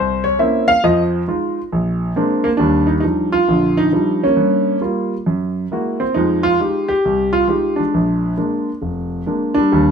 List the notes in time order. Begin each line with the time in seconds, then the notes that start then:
Already playing: C2 C5
0.24 C#5
0.39 A#3 C4 C#4 E4 E5
0.68 F5
0.84 F2 F3 D#5
1.28 G#3 D#4 F4
1.72 A#1
2.16 G#3 A#3 C4 D4
2.44 A#3
2.57 D#2 G3 D4
2.87 D#4
3.00 F3 G3 D4 D#4
3.05 D#4
3.32 F4
3.48 A#1 D3
3.77 D#4
3.92 F3 G3 D4 D#4
4.24 A#3 C#4
4.37 G2
4.81 G3 A#3 F4
5.26 F#2
5.71 G#3 A#3 E4 F#4
6.00 C4
6.14 F2 F3 G#3 D#4
6.43 F4
6.60 G#3 D#4 F4 G4
6.88 G4
7.05 C2
7.33 F4
7.48 G#3 D#4 F4 G4
7.76 G#3 D4
7.94 A#1
8.37 G#3 A#3 D4
8.82 F1
9.26 G#3 A#3 D4
9.54 G3 D4
9.72 D#2 G3